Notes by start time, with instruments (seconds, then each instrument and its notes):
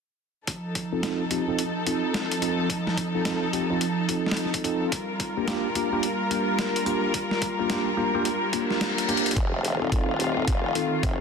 0.47 string section F3 D#4 A4, kick, closed hi-hat
0.75 kick, closed hi-hat
0.92 tine electric piano C4 D#4 F4 A4
1.03 tine electric piano C4 D#4 F4 A4, snare, closed hi-hat
1.31 tine electric piano C4 D#4 F4 G4, closed hi-hat
1.48 tine electric piano C4 D#4 F4 A4
1.59 closed hi-hat
1.86 tine electric piano C4 D#4 F4 A4, closed hi-hat
2.14 snare, closed hi-hat
2.31 closed hi-hat
2.42 tine electric piano C4 D#4 F4 A4, closed hi-hat
2.70 kick, closed hi-hat
2.87 snare
2.97 kick, closed hi-hat
3.15 tine electric piano C4 D#4 F4 A4
3.25 tine electric piano C4 D#4 F4 A4, snare, closed hi-hat
3.53 tine electric piano C4 D#4 F4 G4, closed hi-hat
3.70 tine electric piano C4 D#4 F4 A4
3.81 closed hi-hat
4.09 tine electric piano C4 D#4 F4 A4, kick, closed hi-hat
4.26 snare
4.31 snare
4.37 snare, closed hi-hat
4.45 snare
4.54 kick, closed hi-hat
4.64 tine electric piano C4 D#4 F4 A4, kick, closed hi-hat
4.92 string section G3 F4 A#4, kick, closed hi-hat
5.20 kick, closed hi-hat
5.37 tine electric piano A#3 D4 F4 G4
5.48 tine electric piano A#3 D4 F4 G4, snare, closed hi-hat
5.75 tine electric piano A#3 D4 F4 G4, closed hi-hat
5.93 tine electric piano A#3 D4 F4 G4
6.03 closed hi-hat
6.31 tine electric piano A#3 D4 F4 G4, closed hi-hat
6.59 snare, closed hi-hat
6.76 closed hi-hat
6.86 tine electric piano A#3 D4 F4 G4, closed hi-hat
7.14 kick, closed hi-hat
7.31 snare
7.42 kick, closed hi-hat
7.59 tine electric piano A#3 D4 F4 G4
7.70 tine electric piano A#3 D4 F4 G4, snare, closed hi-hat
7.97 tine electric piano A#3 D4 F4 G4
8.15 tine electric piano A#3 D4 F4 G4
8.25 closed hi-hat, reverse cymbal
8.53 tine electric piano A#3 D4 F4 G4, kick, closed hi-hat
8.71 snare
8.81 snare, closed hi-hat
8.98 closed hi-hat
9.08 tine electric piano A#3 D4 F4 G4, closed hi-hat
9.17 closed hi-hat
9.26 closed hi-hat
9.31 closed hi-hat
9.36 wobble bass F1, string section D#3 A3 F4, kick, closed hi-hat
9.65 closed hi-hat
9.82 tine electric piano C4 D#4 F4 A4
9.92 wobble bass D#1, tine electric piano C4 D#4 F4 A4, kick, closed hi-hat
10.20 tine electric piano C4 D#4 F4 G4, closed hi-hat
10.37 tine electric piano C4 D#4 F4 A4
10.48 wobble bass F1, kick, closed hi-hat
10.75 tine electric piano C4 D#4 F4 A4, closed hi-hat
11.03 wobble bass F1, kick, closed hi-hat